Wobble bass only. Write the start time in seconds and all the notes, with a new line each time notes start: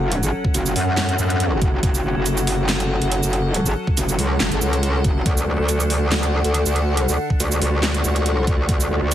Already playing: F#1
0.23 G#1
0.54 F#1
0.76 F#2
1.19 F#2
1.62 F#1
1.83 F#1
2.04 F#1
2.16 F#1
3.02 F#1
3.23 F#1
3.66 G#1
3.97 F#1
4.19 C#2
4.40 F#1
4.52 G#1
4.62 C#2
5.04 F#1
5.26 D2
5.47 D2
5.59 D2
6.45 D2
6.66 D2
7.09 D2
7.40 D2
7.62 D2
8.04 D2
8.47 D2
8.69 D2
8.90 D2
9.02 D2